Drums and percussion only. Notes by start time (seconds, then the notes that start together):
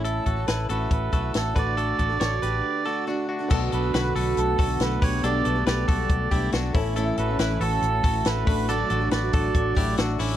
0.05 closed hi-hat
0.26 kick, closed hi-hat
0.48 snare, closed hi-hat
0.70 closed hi-hat
0.91 kick, closed hi-hat
1.13 kick, closed hi-hat
1.34 snare, closed hi-hat
1.56 kick, closed hi-hat
1.78 closed hi-hat
1.99 kick, closed hi-hat
2.21 snare, closed hi-hat
2.43 closed hi-hat
3.51 kick, crash
3.72 hi-hat pedal, open hi-hat
3.94 snare, hi-hat pedal, open hi-hat
4.16 hi-hat pedal, open hi-hat
4.37 hi-hat pedal, open hi-hat
4.59 kick, hi-hat pedal, open hi-hat
4.80 snare, hi-hat pedal, open hi-hat
5.02 kick, hi-hat pedal, open hi-hat
5.24 hi-hat pedal, open hi-hat
5.45 hi-hat pedal, open hi-hat
5.66 snare, hi-hat pedal, open hi-hat
5.88 kick, hi-hat pedal, open hi-hat
6.09 kick, hi-hat pedal, open hi-hat
6.31 kick, hi-hat pedal, open hi-hat
6.52 snare, hi-hat pedal, open hi-hat
6.75 kick, hi-hat pedal, open hi-hat
6.96 hi-hat pedal, open hi-hat
7.17 hi-hat pedal, open hi-hat
7.39 snare, hi-hat pedal, open hi-hat
7.61 hi-hat pedal, open hi-hat
7.82 hi-hat pedal, open hi-hat
8.04 kick, hi-hat pedal, open hi-hat
8.25 snare, hi-hat pedal, open hi-hat
8.47 kick, hi-hat pedal, open hi-hat
8.69 hi-hat pedal, open hi-hat
8.90 hi-hat pedal, open hi-hat
9.11 snare, hi-hat pedal, open hi-hat
9.33 kick, hi-hat pedal, open hi-hat
9.54 kick, hi-hat pedal, open hi-hat
9.77 kick, hi-hat pedal, open hi-hat
9.97 snare, hi-hat pedal, open hi-hat
10.19 hi-hat pedal, open hi-hat